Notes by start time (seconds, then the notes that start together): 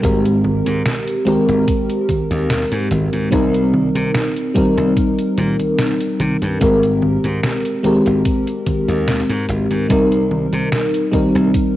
0.02 G#1 G#3 C4 G4 A#4, kick, closed hi-hat, high conga
0.25 closed hi-hat
0.44 high conga
0.66 G#2, closed hi-hat, high conga
0.86 snare, closed hi-hat, high conga
1.08 closed hi-hat
1.25 G#3 C4 G4 A#4, closed hi-hat, high conga
1.48 G#1, closed hi-hat, high conga
1.68 kick, closed hi-hat, high conga
1.90 closed hi-hat
2.09 kick, closed hi-hat, high conga
2.31 D#2, closed hi-hat, high conga
2.50 snare, closed hi-hat, high conga
2.72 G#2, closed hi-hat
2.91 G#1, closed hi-hat, high conga
3.13 G#2, closed hi-hat, high conga
3.30 C2 G3 C4 D#4 A#4, kick, closed hi-hat, high conga
3.54 closed hi-hat
3.74 high conga
3.95 C3, closed hi-hat, high conga
4.15 snare, closed hi-hat, high conga
4.37 closed hi-hat
4.54 G3 C4 D#4 A#4, kick, closed hi-hat, high conga
4.77 C2, closed hi-hat, high conga
4.97 kick, closed hi-hat, high conga
5.19 closed hi-hat
5.38 A#2, closed hi-hat, high conga
5.60 closed hi-hat, high conga
5.79 snare, closed hi-hat, high conga
6.01 closed hi-hat
6.20 C3, closed hi-hat, high conga
6.42 G2, closed hi-hat, high conga
6.60 G#1 G#3 C4 G4 A#4, kick, closed hi-hat, high conga
6.83 closed hi-hat
7.02 high conga
7.24 G#2, closed hi-hat, high conga
7.43 snare, closed hi-hat, high conga
7.65 closed hi-hat
7.83 G#3 C4 G4 A#4, closed hi-hat, high conga
8.06 G#1, closed hi-hat, high conga
8.25 kick, closed hi-hat, high conga
8.47 closed hi-hat
8.66 kick, closed hi-hat, high conga
8.88 D#2, closed hi-hat, high conga
9.08 snare, closed hi-hat
9.29 G#2, closed hi-hat
9.49 G#1, closed hi-hat, high conga
9.71 G#2, closed hi-hat, high conga
9.88 C2 G3 C4 D#4 A#4, kick, closed hi-hat, high conga
10.12 closed hi-hat
10.31 high conga
10.53 C3, closed hi-hat, high conga
10.72 snare, closed hi-hat, high conga
10.94 closed hi-hat
11.11 G3 C4 D#4 A#4, kick, closed hi-hat, high conga
11.35 C2, closed hi-hat, high conga
11.54 kick, closed hi-hat, high conga